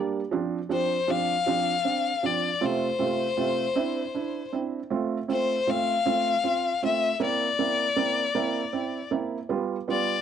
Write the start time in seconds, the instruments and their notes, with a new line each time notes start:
Already playing: felt piano G3 A#3 D4
0.31 felt piano F3 C4 D4
0.69 felt piano F3 C4 D4, violin C5
1.07 felt piano F3 C4 D4, violin F5
1.46 felt piano F3 C4 D4
1.85 felt piano C4 D4
2.23 felt piano F3 C4 D4, violin D5
2.61 felt piano C3 A3 C4 F4
2.65 violin C5
2.99 felt piano C3 A3 C4 F4
3.37 felt piano C3 A3 C4 F4
3.75 felt piano C4 D4 E4
4.15 felt piano D4 E4
4.53 felt piano C4 D4 E4
4.90 felt piano A3 C4 F4
5.28 felt piano A3 C4 F4, violin C5
5.67 felt piano A3 C4 F4, violin F5
6.06 felt piano A3 C4 F4
6.44 felt piano C4 F4
6.83 felt piano A3 C4 F4, violin E5
7.20 felt piano A#3 C4 E4
7.24 violin D5
7.59 felt piano A#3 C4 E4
7.96 felt piano A#3 C4 E4
8.35 felt piano A#3 C4 E4
8.73 felt piano C4 E4
9.11 felt piano A#3 C4 E4
9.49 felt piano G3 B3 F4
9.88 felt piano G3 B3 F4, violin D5